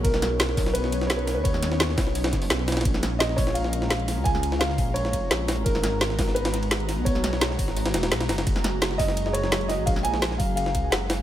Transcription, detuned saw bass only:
\new Staff \with { instrumentName = "Detuned saw bass" } { \clef bass \time 4/4 \key fis \major \tempo 4 = 171 b,,4. b,,2~ b,,16 dis,16~ | dis,4. b,,4 fis,,8 b,,8. ais,,16~ | ais,,4. ais,,2~ ais,,16 cis,16~ | cis,4. ais,,4 eis,,8 ais,,8. gis,,16~ |
gis,,4. gis,,2~ gis,,16 b,,16~ | b,,4. gis,,4 dis,,8 b,,8 fis,,8~ | fis,,4. fis,,2~ fis,,16 ais,,16~ | ais,,4. fis,,4 cis,8 fis,,8. b,,16 | }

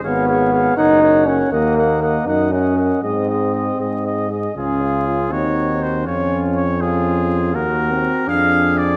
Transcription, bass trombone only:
\new Staff \with { instrumentName = "Bass trombone" } { \clef bass \time 6/8 \key des \major \tempo 4. = 81 aes,,4. ges,,4. | ees,4. ges,4. | aes,4. aes,4. | des,4. ees,4. |
f,2. | ees,4. f,4. | }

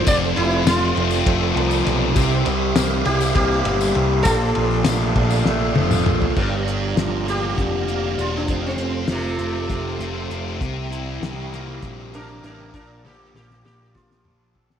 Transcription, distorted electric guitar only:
\new Staff \with { instrumentName = "Distorted electric guitar" } { \time 7/8 \key g \dorian \tempo 4 = 99 f,8 f8 a8 c'8 a8 f8 c8 | c8 g8 bes8 e'8 bes8 g8 c8 | bes,8 f8 a8 d'8 a8 f8 bes,8 | g,8 d'8 f8 bes8 d8 bes8 d'8 |
f,8 c'8 f8 a8 c8 a8 c'8 | c8 e'8 g8 bes8 c8 bes8 e'8 | bes,8 a'8 bes8 d'8 f8 d'8 a'8 | }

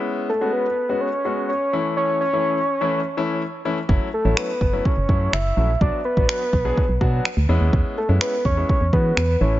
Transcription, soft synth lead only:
\new Staff \with { instrumentName = "Soft synth lead" } { \time 4/4 \key e \mixolydian \tempo 4 = 125 r8 a'8 b'4 cis''4 cis''4 | cis''8 cis''2. r8 | r8 a'8 b'4 cis''4 e''4 | d''8 b'2. r8 |
r8 a'8 b'8 cis''8 cis''8 b'8 b'8 cis''8 | }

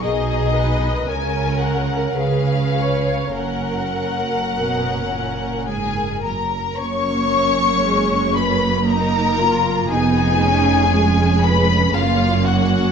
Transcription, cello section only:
\new Staff \with { instrumentName = "Cello section" } { \clef bass \time 3/4 \key fis \major \tempo 4 = 57 b,4 cis4 cis4 | fis,4 b,8 ais,8 gis,8 fis,8 | fis,2. | eis,2 fis,4 | }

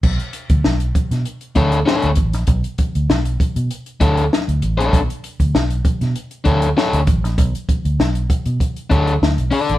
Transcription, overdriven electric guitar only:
\new Staff \with { instrumentName = "Overdriven electric guitar" } { \time 4/4 \key b \minor \tempo 4 = 98 r2 r8 <d' a' cis''>16 r16 <d' a' cis''>16 r8. | r2 r8 <d' a' cis''>16 r4 <d' a' cis''>16 | r2 r8 <d' a' cis''>16 r16 <d' a' cis''>16 r8. | r2 r8 <d' a' cis''>16 r8. <d' a' d''>16 r16 | }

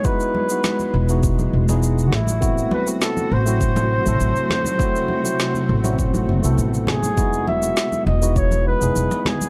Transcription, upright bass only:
\new Staff \with { instrumentName = "Upright bass" } { \clef bass \time 4/4 \key e \major \tempo 4 = 101 r4. e,,8. r16 e,,4 a,,8~ | a,,16 r4 r16 a,,4 r16 a,,16 a,,16 r8. | r4. a,,4 fis,,16 c,16 a,,4 | e,,8. r8. e,,4 r16 e,,16 e,,16 r8. | }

